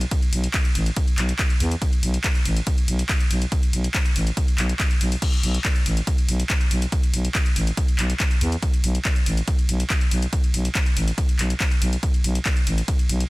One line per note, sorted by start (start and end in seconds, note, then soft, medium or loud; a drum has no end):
0.01 closed hi-hat soft
0.11 kick loud
0.11 closed hi-hat medium
0.11 ride medium
0.22 closed hi-hat medium
0.33 0.48 B1 medium
0.33 open hi-hat loud
0.44 closed hi-hat medium
0.54 kick loud
0.54 clap loud
0.54 closed hi-hat medium
0.54 ride medium
0.65 closed hi-hat medium
0.75 0.90 A1 loud
0.75 open hi-hat loud
0.86 closed hi-hat medium
0.96 kick loud
0.96 closed hi-hat medium
0.96 ride medium
1.08 closed hi-hat soft
1.18 1.33 B1 loud
1.18 clap medium
1.18 open hi-hat loud
1.29 closed hi-hat medium
1.39 kick loud
1.39 clap loud
1.39 closed hi-hat medium
1.39 ride medium
1.50 closed hi-hat medium
1.60 1.75 E2 loud
1.60 open hi-hat loud
1.71 closed hi-hat medium
1.82 kick loud
1.82 closed hi-hat loud
1.82 ride medium
1.93 closed hi-hat soft
2.03 2.18 B1 loud
2.03 open hi-hat loud
2.14 closed hi-hat medium
2.24 kick loud
2.24 clap loud
2.24 closed hi-hat medium
2.24 ride medium
2.35 closed hi-hat medium
2.45 2.60 A1 loud
2.45 open hi-hat loud
2.57 closed hi-hat medium
2.67 kick loud
2.67 closed hi-hat medium
2.67 ride medium
2.78 closed hi-hat medium
2.88 3.03 B1 loud
2.88 open hi-hat loud
2.99 closed hi-hat medium
3.09 kick loud
3.09 clap loud
3.09 closed hi-hat medium
3.09 ride medium
3.20 closed hi-hat medium
3.31 3.46 B1 medium
3.31 open hi-hat loud
3.42 closed hi-hat medium
3.52 kick loud
3.52 closed hi-hat loud
3.52 ride medium
3.63 closed hi-hat medium
3.73 3.88 B1 medium
3.73 open hi-hat loud
3.84 closed hi-hat medium
3.94 kick loud
3.94 clap loud
3.94 closed hi-hat loud
3.94 ride medium
4.06 closed hi-hat medium
4.16 4.31 A1 loud
4.16 open hi-hat loud
4.27 closed hi-hat medium
4.37 kick loud
4.37 closed hi-hat loud
4.37 ride medium
4.48 closed hi-hat medium
4.58 4.73 B1 loud
4.58 clap medium
4.58 open hi-hat loud
4.69 closed hi-hat medium
4.80 kick loud
4.80 clap loud
4.80 closed hi-hat medium
4.80 ride medium
4.91 closed hi-hat medium
5.01 5.16 B1 medium
5.01 open hi-hat loud
5.12 open hi-hat medium
5.22 kick loud
5.22 closed hi-hat loud
5.22 crash medium
5.22 ride medium
5.33 closed hi-hat medium
5.43 5.58 B1 loud
5.43 open hi-hat loud
5.54 closed hi-hat medium
5.65 kick loud
5.65 clap loud
5.65 closed hi-hat loud
5.65 ride medium
5.76 closed hi-hat medium
5.86 6.01 A1 loud
5.86 open hi-hat loud
5.97 closed hi-hat medium
6.07 kick loud
6.07 closed hi-hat loud
6.07 ride medium
6.18 closed hi-hat medium
6.28 6.43 B1 loud
6.28 open hi-hat loud
6.40 closed hi-hat medium
6.50 kick loud
6.50 clap loud
6.50 closed hi-hat loud
6.50 ride medium
6.61 closed hi-hat medium
6.71 6.86 B1 medium
6.71 open hi-hat loud
6.82 closed hi-hat medium
6.92 kick loud
6.92 closed hi-hat loud
6.92 ride medium
7.03 closed hi-hat medium
7.14 7.29 B1 medium
7.14 open hi-hat loud
7.25 closed hi-hat medium
7.35 kick loud
7.35 clap loud
7.35 closed hi-hat loud
7.35 ride medium
7.46 closed hi-hat medium
7.56 7.71 A1 loud
7.56 open hi-hat loud
7.67 closed hi-hat medium
7.77 kick loud
7.77 closed hi-hat loud
7.77 ride medium
7.88 closed hi-hat medium
7.99 8.14 B1 loud
7.99 clap medium
7.99 open hi-hat loud
8.10 closed hi-hat medium
8.20 kick loud
8.20 clap loud
8.20 closed hi-hat loud
8.20 ride medium
8.31 closed hi-hat medium
8.41 8.56 E2 loud
8.41 open hi-hat loud
8.52 closed hi-hat medium
8.62 kick loud
8.62 closed hi-hat loud
8.62 ride medium
8.74 closed hi-hat medium
8.84 8.99 B1 loud
8.84 open hi-hat loud
8.95 closed hi-hat medium
9.05 kick loud
9.05 clap loud
9.05 closed hi-hat loud
9.05 ride medium
9.16 closed hi-hat medium
9.26 9.41 A1 loud
9.26 open hi-hat loud
9.37 closed hi-hat medium
9.48 kick loud
9.48 closed hi-hat loud
9.48 ride medium
9.59 closed hi-hat medium
9.69 9.84 B1 loud
9.69 open hi-hat loud
9.80 closed hi-hat medium
9.90 kick loud
9.90 clap loud
9.90 closed hi-hat loud
9.90 ride medium
10.01 closed hi-hat medium
10.11 10.26 B1 medium
10.11 open hi-hat loud
10.22 closed hi-hat medium
10.33 kick loud
10.33 closed hi-hat medium
10.33 ride medium
10.44 closed hi-hat medium
10.54 10.69 B1 medium
10.54 open hi-hat loud
10.65 closed hi-hat medium
10.75 kick loud
10.75 clap loud
10.75 closed hi-hat loud
10.75 ride medium
10.86 closed hi-hat medium
10.97 11.12 A1 loud
10.97 open hi-hat loud
11.08 closed hi-hat medium
11.18 kick loud
11.18 closed hi-hat loud
11.18 ride medium
11.29 closed hi-hat medium
11.39 11.54 B1 loud
11.39 clap medium
11.39 open hi-hat loud
11.50 closed hi-hat medium
11.60 kick loud
11.60 clap loud
11.60 closed hi-hat medium
11.60 ride medium
11.71 closed hi-hat medium
11.82 11.97 B1 loud
11.82 open hi-hat loud
11.93 closed hi-hat medium
12.03 kick loud
12.03 closed hi-hat medium
12.03 ride medium
12.14 closed hi-hat medium
12.24 12.39 B1 loud
12.24 open hi-hat loud
12.35 closed hi-hat medium
12.45 kick loud
12.45 clap loud
12.45 closed hi-hat medium
12.45 ride medium
12.57 closed hi-hat medium
12.67 12.82 A1 loud
12.67 open hi-hat loud
12.78 closed hi-hat medium
12.88 kick loud
12.88 closed hi-hat medium
12.88 ride medium
12.99 closed hi-hat medium
13.09 13.24 B1 loud
13.09 open hi-hat loud
13.20 closed hi-hat medium